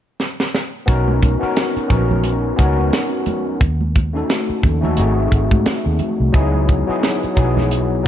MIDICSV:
0, 0, Header, 1, 5, 480
1, 0, Start_track
1, 0, Key_signature, 5, "major"
1, 0, Tempo, 683371
1, 615, Time_signature, 4, 2, 24, 8
1, 5675, End_track
2, 0, Start_track
2, 0, Title_t, "Tine electric piano"
2, 0, Program_c, 0, 4
2, 603, Note_on_c, 0, 59, 90
2, 610, Note_on_c, 0, 61, 89
2, 617, Note_on_c, 0, 63, 81
2, 622, Note_on_c, 0, 66, 90
2, 627, Note_on_c, 0, 70, 99
2, 747, Control_c, 0, 64, 127
2, 941, Note_off_c, 0, 59, 0
2, 945, Note_off_c, 0, 61, 0
2, 948, Note_off_c, 0, 63, 0
2, 951, Note_off_c, 0, 66, 0
2, 954, Note_off_c, 0, 70, 0
2, 979, Note_on_c, 0, 59, 73
2, 986, Note_on_c, 0, 61, 64
2, 992, Note_on_c, 0, 63, 63
2, 997, Note_on_c, 0, 66, 71
2, 1005, Note_on_c, 0, 70, 82
2, 1293, Note_off_c, 0, 59, 0
2, 1297, Note_off_c, 0, 61, 0
2, 1300, Note_off_c, 0, 63, 0
2, 1303, Note_off_c, 0, 66, 0
2, 1306, Note_off_c, 0, 70, 0
2, 1322, Note_on_c, 0, 59, 70
2, 1330, Note_on_c, 0, 61, 63
2, 1334, Note_on_c, 0, 63, 63
2, 1338, Note_on_c, 0, 66, 66
2, 1348, Note_on_c, 0, 70, 77
2, 1763, Note_off_c, 0, 59, 0
2, 1767, Note_off_c, 0, 61, 0
2, 1769, Note_off_c, 0, 63, 0
2, 1771, Note_off_c, 0, 66, 0
2, 1776, Note_off_c, 0, 70, 0
2, 1802, Note_on_c, 0, 59, 73
2, 1807, Note_on_c, 0, 61, 68
2, 1814, Note_on_c, 0, 63, 69
2, 1820, Note_on_c, 0, 66, 70
2, 1824, Note_on_c, 0, 70, 78
2, 2529, Note_off_c, 0, 59, 0
2, 2531, Note_off_c, 0, 61, 0
2, 2534, Note_off_c, 0, 63, 0
2, 2538, Note_off_c, 0, 66, 0
2, 2540, Note_off_c, 0, 70, 0
2, 2544, Control_c, 0, 64, 0
2, 2650, Control_c, 0, 64, 127
2, 2903, Note_on_c, 0, 57, 70
2, 2908, Note_on_c, 0, 61, 64
2, 2917, Note_on_c, 0, 63, 65
2, 2921, Note_on_c, 0, 66, 65
2, 2927, Note_on_c, 0, 69, 80
2, 3326, Note_off_c, 0, 57, 0
2, 3329, Note_off_c, 0, 61, 0
2, 3333, Note_off_c, 0, 63, 0
2, 3335, Note_off_c, 0, 66, 0
2, 3338, Note_off_c, 0, 69, 0
2, 3379, Note_on_c, 0, 57, 73
2, 3387, Note_on_c, 0, 61, 70
2, 3395, Note_on_c, 0, 63, 65
2, 3400, Note_on_c, 0, 66, 74
2, 3404, Note_on_c, 0, 69, 78
2, 3476, Note_off_c, 0, 57, 0
2, 3485, Note_on_c, 0, 57, 80
2, 3487, Note_off_c, 0, 63, 0
2, 3492, Note_off_c, 0, 61, 0
2, 3492, Note_on_c, 0, 60, 70
2, 3494, Note_off_c, 0, 66, 0
2, 3496, Note_on_c, 0, 63, 68
2, 3500, Note_off_c, 0, 69, 0
2, 3502, Note_on_c, 0, 66, 69
2, 3505, Control_c, 0, 64, 0
2, 3508, Note_on_c, 0, 68, 92
2, 3609, Control_c, 0, 64, 127
2, 4360, Note_off_c, 0, 57, 0
2, 4363, Note_off_c, 0, 60, 0
2, 4365, Note_off_c, 0, 63, 0
2, 4369, Note_off_c, 0, 66, 0
2, 4371, Note_off_c, 0, 68, 0
2, 4441, Note_on_c, 0, 54, 101
2, 4447, Note_on_c, 0, 59, 86
2, 4454, Note_on_c, 0, 63, 84
2, 4461, Note_on_c, 0, 64, 91
2, 4465, Control_c, 0, 64, 0
2, 4465, Note_on_c, 0, 68, 102
2, 4588, Control_c, 0, 64, 127
2, 4781, Note_off_c, 0, 54, 0
2, 4784, Note_off_c, 0, 59, 0
2, 4787, Note_off_c, 0, 63, 0
2, 4791, Note_off_c, 0, 64, 0
2, 4793, Note_off_c, 0, 68, 0
2, 4824, Note_on_c, 0, 54, 70
2, 4829, Note_on_c, 0, 59, 71
2, 4833, Note_on_c, 0, 63, 68
2, 4841, Note_on_c, 0, 64, 64
2, 4846, Note_on_c, 0, 68, 82
2, 5137, Note_off_c, 0, 54, 0
2, 5139, Note_off_c, 0, 59, 0
2, 5141, Note_off_c, 0, 63, 0
2, 5145, Note_off_c, 0, 64, 0
2, 5148, Note_off_c, 0, 68, 0
2, 5162, Note_on_c, 0, 54, 72
2, 5168, Note_on_c, 0, 59, 64
2, 5174, Note_on_c, 0, 63, 71
2, 5179, Note_on_c, 0, 64, 67
2, 5187, Note_on_c, 0, 68, 80
2, 5604, Note_off_c, 0, 54, 0
2, 5607, Note_off_c, 0, 59, 0
2, 5610, Note_off_c, 0, 63, 0
2, 5613, Note_off_c, 0, 64, 0
2, 5617, Note_off_c, 0, 68, 0
2, 5644, Note_on_c, 0, 54, 73
2, 5650, Note_on_c, 0, 59, 69
2, 5675, Note_off_c, 0, 54, 0
2, 5675, Note_off_c, 0, 59, 0
2, 5675, End_track
3, 0, Start_track
3, 0, Title_t, "Fingered electric bass"
3, 0, Program_c, 1, 33
3, 619, Note_on_c, 1, 35, 95
3, 955, Note_off_c, 1, 35, 0
3, 1338, Note_on_c, 1, 34, 72
3, 1765, Note_off_c, 1, 34, 0
3, 1821, Note_on_c, 1, 37, 74
3, 2032, Note_off_c, 1, 37, 0
3, 2536, Note_on_c, 1, 39, 97
3, 2964, Note_off_c, 1, 39, 0
3, 3257, Note_on_c, 1, 39, 78
3, 3495, Note_on_c, 1, 32, 89
3, 3506, Note_off_c, 1, 39, 0
3, 3709, Note_off_c, 1, 32, 0
3, 3735, Note_on_c, 1, 32, 72
3, 3859, Note_off_c, 1, 32, 0
3, 3872, Note_on_c, 1, 44, 79
3, 3963, Note_off_c, 1, 44, 0
3, 4116, Note_on_c, 1, 39, 75
3, 4205, Note_off_c, 1, 39, 0
3, 4355, Note_on_c, 1, 36, 86
3, 4445, Note_off_c, 1, 36, 0
3, 4455, Note_on_c, 1, 37, 105
3, 4793, Note_off_c, 1, 37, 0
3, 5179, Note_on_c, 1, 35, 74
3, 5660, Note_off_c, 1, 35, 0
3, 5675, End_track
4, 0, Start_track
4, 0, Title_t, "Muted fingered electric bass strokes"
4, 1002, Note_on_c, 9, 29, 45
4, 1072, Note_off_c, 9, 29, 0
4, 1240, Note_on_c, 9, 29, 43
4, 1310, Note_off_c, 9, 29, 0
4, 3158, Note_on_c, 9, 29, 42
4, 3228, Note_off_c, 9, 29, 0
4, 3977, Note_on_c, 9, 29, 43
4, 4047, Note_off_c, 9, 29, 0
4, 4840, Note_on_c, 9, 29, 45
4, 4910, Note_off_c, 9, 29, 0
4, 5085, Note_on_c, 9, 29, 46
4, 5155, Note_off_c, 9, 29, 0
4, 5675, End_track
5, 0, Start_track
5, 0, Title_t, "Drums"
5, 139, Note_on_c, 9, 38, 61
5, 209, Note_off_c, 9, 38, 0
5, 280, Note_on_c, 9, 38, 76
5, 351, Note_off_c, 9, 38, 0
5, 384, Note_on_c, 9, 38, 77
5, 454, Note_off_c, 9, 38, 0
5, 617, Note_on_c, 9, 36, 99
5, 619, Note_on_c, 9, 42, 83
5, 621, Note_on_c, 9, 62, 32
5, 687, Note_off_c, 9, 36, 0
5, 689, Note_off_c, 9, 42, 0
5, 691, Note_off_c, 9, 62, 0
5, 757, Note_on_c, 9, 63, 62
5, 828, Note_off_c, 9, 63, 0
5, 858, Note_on_c, 9, 62, 27
5, 858, Note_on_c, 9, 63, 55
5, 859, Note_on_c, 9, 42, 78
5, 861, Note_on_c, 9, 36, 76
5, 929, Note_off_c, 9, 62, 0
5, 929, Note_off_c, 9, 63, 0
5, 930, Note_off_c, 9, 42, 0
5, 931, Note_off_c, 9, 36, 0
5, 1098, Note_on_c, 9, 62, 29
5, 1100, Note_on_c, 9, 42, 76
5, 1102, Note_on_c, 9, 38, 108
5, 1168, Note_off_c, 9, 62, 0
5, 1170, Note_off_c, 9, 42, 0
5, 1172, Note_off_c, 9, 38, 0
5, 1242, Note_on_c, 9, 42, 46
5, 1313, Note_off_c, 9, 42, 0
5, 1335, Note_on_c, 9, 36, 76
5, 1340, Note_on_c, 9, 42, 63
5, 1341, Note_on_c, 9, 64, 57
5, 1406, Note_off_c, 9, 36, 0
5, 1410, Note_off_c, 9, 42, 0
5, 1411, Note_off_c, 9, 64, 0
5, 1482, Note_on_c, 9, 63, 54
5, 1482, Note_on_c, 9, 64, 69
5, 1552, Note_off_c, 9, 63, 0
5, 1552, Note_off_c, 9, 64, 0
5, 1570, Note_on_c, 9, 42, 83
5, 1578, Note_on_c, 9, 62, 33
5, 1641, Note_off_c, 9, 42, 0
5, 1649, Note_off_c, 9, 62, 0
5, 1818, Note_on_c, 9, 36, 74
5, 1819, Note_on_c, 9, 62, 29
5, 1820, Note_on_c, 9, 42, 82
5, 1889, Note_off_c, 9, 36, 0
5, 1889, Note_off_c, 9, 62, 0
5, 1891, Note_off_c, 9, 42, 0
5, 1957, Note_on_c, 9, 63, 64
5, 2028, Note_off_c, 9, 63, 0
5, 2057, Note_on_c, 9, 42, 75
5, 2058, Note_on_c, 9, 62, 31
5, 2060, Note_on_c, 9, 38, 108
5, 2128, Note_off_c, 9, 42, 0
5, 2128, Note_off_c, 9, 62, 0
5, 2130, Note_off_c, 9, 38, 0
5, 2291, Note_on_c, 9, 42, 68
5, 2295, Note_on_c, 9, 62, 29
5, 2295, Note_on_c, 9, 63, 62
5, 2295, Note_on_c, 9, 64, 58
5, 2361, Note_off_c, 9, 42, 0
5, 2366, Note_off_c, 9, 62, 0
5, 2366, Note_off_c, 9, 63, 0
5, 2366, Note_off_c, 9, 64, 0
5, 2535, Note_on_c, 9, 36, 107
5, 2535, Note_on_c, 9, 42, 83
5, 2536, Note_on_c, 9, 62, 30
5, 2605, Note_off_c, 9, 36, 0
5, 2605, Note_off_c, 9, 42, 0
5, 2606, Note_off_c, 9, 62, 0
5, 2673, Note_on_c, 9, 63, 60
5, 2744, Note_off_c, 9, 63, 0
5, 2778, Note_on_c, 9, 42, 76
5, 2778, Note_on_c, 9, 62, 29
5, 2778, Note_on_c, 9, 63, 55
5, 2780, Note_on_c, 9, 36, 79
5, 2848, Note_off_c, 9, 42, 0
5, 2848, Note_off_c, 9, 62, 0
5, 2848, Note_off_c, 9, 63, 0
5, 2850, Note_off_c, 9, 36, 0
5, 3018, Note_on_c, 9, 42, 79
5, 3020, Note_on_c, 9, 38, 108
5, 3088, Note_off_c, 9, 42, 0
5, 3090, Note_off_c, 9, 38, 0
5, 3255, Note_on_c, 9, 36, 75
5, 3258, Note_on_c, 9, 62, 28
5, 3258, Note_on_c, 9, 64, 58
5, 3262, Note_on_c, 9, 42, 68
5, 3325, Note_off_c, 9, 36, 0
5, 3328, Note_off_c, 9, 62, 0
5, 3328, Note_off_c, 9, 64, 0
5, 3332, Note_off_c, 9, 42, 0
5, 3397, Note_on_c, 9, 63, 52
5, 3397, Note_on_c, 9, 64, 79
5, 3467, Note_off_c, 9, 63, 0
5, 3467, Note_off_c, 9, 64, 0
5, 3490, Note_on_c, 9, 42, 90
5, 3498, Note_on_c, 9, 62, 35
5, 3560, Note_off_c, 9, 42, 0
5, 3568, Note_off_c, 9, 62, 0
5, 3736, Note_on_c, 9, 36, 78
5, 3737, Note_on_c, 9, 42, 78
5, 3737, Note_on_c, 9, 62, 29
5, 3806, Note_off_c, 9, 36, 0
5, 3807, Note_off_c, 9, 42, 0
5, 3807, Note_off_c, 9, 62, 0
5, 3872, Note_on_c, 9, 36, 82
5, 3876, Note_on_c, 9, 63, 62
5, 3943, Note_off_c, 9, 36, 0
5, 3946, Note_off_c, 9, 63, 0
5, 3975, Note_on_c, 9, 42, 84
5, 3977, Note_on_c, 9, 38, 108
5, 3977, Note_on_c, 9, 62, 30
5, 4045, Note_off_c, 9, 42, 0
5, 4048, Note_off_c, 9, 38, 0
5, 4048, Note_off_c, 9, 62, 0
5, 4208, Note_on_c, 9, 42, 65
5, 4212, Note_on_c, 9, 62, 27
5, 4212, Note_on_c, 9, 63, 60
5, 4212, Note_on_c, 9, 64, 60
5, 4278, Note_off_c, 9, 42, 0
5, 4283, Note_off_c, 9, 62, 0
5, 4283, Note_off_c, 9, 63, 0
5, 4283, Note_off_c, 9, 64, 0
5, 4453, Note_on_c, 9, 36, 102
5, 4454, Note_on_c, 9, 42, 77
5, 4524, Note_off_c, 9, 36, 0
5, 4524, Note_off_c, 9, 42, 0
5, 4595, Note_on_c, 9, 63, 63
5, 4665, Note_off_c, 9, 63, 0
5, 4696, Note_on_c, 9, 42, 73
5, 4696, Note_on_c, 9, 63, 59
5, 4698, Note_on_c, 9, 36, 79
5, 4766, Note_off_c, 9, 42, 0
5, 4766, Note_off_c, 9, 63, 0
5, 4768, Note_off_c, 9, 36, 0
5, 4939, Note_on_c, 9, 42, 78
5, 4941, Note_on_c, 9, 38, 102
5, 4941, Note_on_c, 9, 62, 27
5, 5009, Note_off_c, 9, 42, 0
5, 5011, Note_off_c, 9, 38, 0
5, 5011, Note_off_c, 9, 62, 0
5, 5080, Note_on_c, 9, 42, 44
5, 5150, Note_off_c, 9, 42, 0
5, 5176, Note_on_c, 9, 36, 72
5, 5180, Note_on_c, 9, 64, 59
5, 5182, Note_on_c, 9, 42, 64
5, 5246, Note_off_c, 9, 36, 0
5, 5250, Note_off_c, 9, 64, 0
5, 5253, Note_off_c, 9, 42, 0
5, 5317, Note_on_c, 9, 63, 56
5, 5317, Note_on_c, 9, 64, 79
5, 5323, Note_on_c, 9, 38, 30
5, 5387, Note_off_c, 9, 63, 0
5, 5387, Note_off_c, 9, 64, 0
5, 5393, Note_off_c, 9, 38, 0
5, 5417, Note_on_c, 9, 62, 33
5, 5418, Note_on_c, 9, 42, 89
5, 5487, Note_off_c, 9, 62, 0
5, 5488, Note_off_c, 9, 42, 0
5, 5675, End_track
0, 0, End_of_file